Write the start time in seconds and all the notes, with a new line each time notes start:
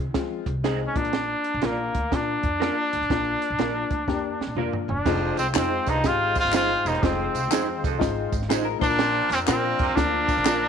Already playing: C3
0.14 F3 G#3 C4 F4, kick, snare, closed hi-hat
0.46 C2, kick, closed hi-hat
0.64 G#3 C4 D#4 F4 G#4 C5, snare, closed hi-hat
0.87 C#4
0.96 A#1 A#3 D4 F4, kick, closed hi-hat
1.05 closed hi-hat
1.13 snare, closed hi-hat
1.44 closed hi-hat
1.54 A#1
1.62 A#1 A#3 D4 F4 A#4 D5, snare, closed hi-hat
1.95 D2, kick, closed hi-hat
2.11 A#2 A#3 D4 F4, kick, snare, closed hi-hat
2.43 F2, kick, closed hi-hat
2.60 A#3 D4 F4 A#4 D5, snare, closed hi-hat
2.93 D2, closed hi-hat
3.01 A1, closed hi-hat
3.10 A#1 A#3 D4 F4, kick, snare, closed hi-hat
3.42 closed hi-hat
3.50 A#1
3.58 A#1 A#3 D4 F4 A#4 D5, snare, closed hi-hat
3.91 D2, kick, closed hi-hat
4.08 F2 A#3 D4 G4, kick, snare
4.40 muted upright bass stroke, snare
4.47 A#2
4.55 F2 A#3 D4 F4 A#4 D5, mid tom
4.73 floor tom
4.88 E1 D4, floor tom
5.06 F1 F2 G#3 C4 D#4 F4 C5, kick, snare, crash, tambourine
5.37 C2 C4, closed hi-hat, tambourine
5.54 F2 G#3 D#4 F4 G#4 C5, snare, clap, closed hi-hat, tambourine
5.58 C4
5.86 C2 G2 D#4, kick, closed hi-hat, tambourine
6.04 G#1 G#3 D#4 F4 G4, kick, snare, closed hi-hat, tambourine
6.35 kick, closed hi-hat, tambourine
6.40 F4
6.45 G1, snare, closed hi-hat
6.52 G#3 D#4 F4 G#4 C5, snare, clap, closed hi-hat, tambourine
6.85 E1 D#2 D#4, closed hi-hat, tambourine
6.95 closed hi-hat
7.02 F1 F2 G#3 C4 D#4 F4, kick, snare, closed hi-hat, tambourine
7.34 C2, closed hi-hat, tambourine
7.51 F2 G#3 D#4 F4 G#4 C5, snare, clap, closed hi-hat, tambourine
7.83 C2 F2, kick, closed hi-hat, tambourine
7.99 G#1 G#3 D#4 F4, kick, snare, closed hi-hat, tambourine
8.32 G#1, kick, closed hi-hat, tambourine
8.42 snare
8.48 A1 G#3 D#4 F4 G#4 C5, snare, clap, closed hi-hat, tambourine
8.65 A#4
8.79 A#1 F3 A#3 D4 E4 A#4 C5, kick, closed hi-hat
8.84 F4, tambourine
8.90 A#4, closed hi-hat
8.99 A#2, snare, closed hi-hat, tambourine
9.30 F2 C4, closed hi-hat, tambourine
9.47 A#2 A#3 C4 D4 F4 A#4 D5, snare, clap, closed hi-hat, tambourine
9.79 F2 C3, kick, closed hi-hat
9.96 D2 A#3 D4 F4, kick, snare, closed hi-hat, tambourine
10.28 kick, closed hi-hat, tambourine
10.37 A#1, snare
10.45 A#3 D4 F4 A#4 D5, snare, clap, closed hi-hat, tambourine